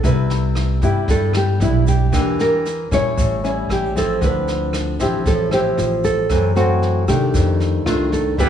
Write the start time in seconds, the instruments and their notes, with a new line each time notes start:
0.03 upright bass C2, nylon-string guitar C3 G3 B3 E4 B4, kick, snare, shaker
0.30 snare, shaker
0.55 cross-stick, snare
0.82 upright bass G2, nylon-string guitar G3 B3 E4 G4, kick, snare, shaker
1.08 upright bass G2, nylon-string guitar G2 A4, kick, snare, shaker
1.33 nylon-string guitar G4, cross-stick, snare, shaker
1.60 upright bass B1, nylon-string guitar G3 B3 E4, snare, shaker
1.87 nylon-string guitar G4, kick, snare, shaker
2.12 upright bass E2, nylon-string guitar E3 A#3 D4 G4, kick, cross-stick, snare, shaker
2.39 nylon-string guitar A#4, snare, shaker
2.65 snare, shaker
2.91 upright bass A#2, nylon-string guitar G3 C#4 E4 C#5, kick, cross-stick, snare, shaker
3.17 upright bass A1, nylon-string guitar A2, kick, snare, shaker
3.44 nylon-string guitar G3 C#4 E4, snare, shaker
3.69 upright bass A1, nylon-string guitar G4, cross-stick, snare
3.95 nylon-string guitar F3 C4 E4 A4, kick, snare, shaker
4.21 upright bass D2, nylon-string guitar D3 B4, kick, snare, shaker
4.48 snare, shaker
4.73 cross-stick, snare, shaker
4.99 upright bass A1, nylon-string guitar F3 C4 E4 G4, kick, snare, shaker
5.26 upright bass A1, nylon-string guitar A2 A4, kick, snare, shaker
5.51 nylon-string guitar F3 C4 E4 G4, cross-stick, snare, shaker
5.77 upright bass A1, nylon-string guitar F4, snare, shaker
6.04 nylon-string guitar A4, kick, snare, shaker
6.30 nylon-string guitar F#2 E3 A3 C4, upright bass F#2, kick, cross-stick, snare, shaker
6.55 nylon-string guitar E3 A3 C4 F#4, snare, shaker
6.82 snare
7.08 upright bass C3, nylon-string guitar D#3 A3 D4 G4, kick, cross-stick, snare, shaker
7.34 upright bass F2, nylon-string guitar F2, kick, snare, shaker
7.60 snare, shaker
7.86 upright bass C2, nylon-string guitar D#3 A3 D4 F4, cross-stick, snare
8.12 nylon-string guitar A4, kick, snare, shaker
8.38 upright bass E2, pipe organ D3 G3 B3 E4, nylon-string guitar E3 B3 D4 G4 B4, kick, snare, shaker